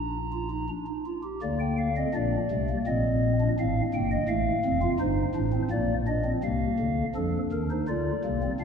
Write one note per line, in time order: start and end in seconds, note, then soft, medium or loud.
0.00 0.69 A#1 medium
0.00 0.69 A#2 medium
0.00 0.18 D4 medium
0.00 0.69 A#5 medium
0.33 0.48 F4 medium
0.50 0.66 D#4 medium
0.69 0.85 D4 medium
0.87 1.03 D#4 medium
1.06 1.22 F4 medium
1.23 1.39 G4 medium
1.42 2.05 D2 medium
1.42 2.05 D3 medium
1.42 1.89 A#3 medium
1.42 1.58 D5 medium
1.60 1.76 G5 medium
1.78 1.94 F5 medium
1.97 2.13 C4 medium
1.97 2.12 D#5 medium
2.14 2.37 A#1 medium
2.14 2.37 A#2 medium
2.14 2.37 D4 medium
2.14 2.77 D5 medium
2.51 2.73 C2 medium
2.51 2.73 C3 medium
2.51 2.66 A3 medium
2.70 2.85 A#3 medium
2.87 3.49 A#1 medium
2.87 3.49 A#2 medium
2.87 3.33 C4 medium
2.87 3.49 D#5 medium
3.41 3.56 D4 medium
3.60 3.82 A1 medium
3.60 3.82 A2 medium
3.60 3.82 C4 medium
3.60 3.81 F5 medium
3.94 4.16 G1 medium
3.94 4.16 G2 medium
3.94 4.16 A#3 medium
3.94 4.10 G5 medium
4.12 4.27 D#5 medium
4.29 4.51 A1 medium
4.29 4.51 A2 medium
4.29 4.51 A3 loud
4.29 4.90 F5 medium
4.65 4.87 F1 medium
4.65 4.87 F2 medium
4.65 4.80 C4 loud
4.82 4.98 F4 medium
4.99 5.22 G1 medium
4.99 5.22 G2 medium
4.99 5.22 D#4 loud
4.99 5.62 C5 medium
5.35 5.58 A1 medium
5.35 5.58 A2 medium
5.35 5.51 D4 loud
5.53 5.69 C4 medium
5.70 6.33 A#1 medium
5.70 6.33 A#2 medium
5.70 5.93 A#3 medium
5.70 5.94 D5 medium
6.07 6.23 D4 loud
6.07 6.30 D#5 medium
6.25 6.41 C4 medium
6.44 6.66 C2 medium
6.44 6.66 C3 medium
6.44 7.06 A#3 medium
6.44 7.06 F5 medium
6.79 7.02 D2 medium
6.79 7.02 D3 medium
7.15 7.38 F2 medium
7.15 7.38 F3 medium
7.15 7.62 D4 medium
7.15 7.38 A4 medium
7.52 7.75 D#2 medium
7.52 7.75 D#3 medium
7.52 7.68 A#4 medium
7.70 7.86 D#4 medium
7.70 7.86 C5 medium
7.88 8.11 D2 medium
7.88 8.11 D3 medium
7.88 8.11 F4 medium
7.88 8.51 D5 medium
8.24 8.47 C2 medium
8.24 8.47 C3 medium
8.24 8.40 A#3 medium
8.43 8.59 C4 medium
8.60 8.64 A#1 medium
8.60 8.64 A#2 medium
8.60 8.64 D4 medium
8.60 8.64 F5 medium